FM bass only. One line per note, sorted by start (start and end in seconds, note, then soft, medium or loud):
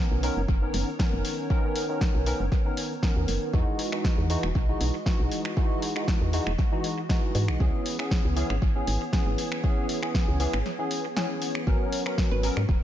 0.11 0.30 B1 medium
0.37 0.45 F#1 medium
0.48 0.68 F#1 medium
0.74 0.84 F#1 loud
1.13 1.22 F#1 loud
2.15 2.33 B1 loud
2.40 2.49 F#1 medium
3.16 3.25 D#2 medium
3.28 3.38 F#1 medium
3.54 3.64 E2 loud
4.18 4.36 E2 loud
4.43 4.52 E1 medium
4.55 4.75 B1 medium
4.81 4.91 B1 loud
5.20 5.29 B1 medium
6.21 6.40 E2 medium
6.47 6.56 E1 medium
7.35 7.50 G#2 loud
7.48 7.57 B1 medium
7.60 7.70 C#2 loud
8.25 8.43 C#2 loud
8.50 8.59 G#1 medium
8.62 8.81 G#1 medium
8.87 8.98 G#1 loud
9.26 9.35 G#1 loud
10.28 10.47 C#2 loud
10.53 10.62 G#1 medium
11.67 11.77 G#1 loud
12.31 12.50 G#1 medium
12.57 12.66 G#2 medium
12.69 12.83 D#1 medium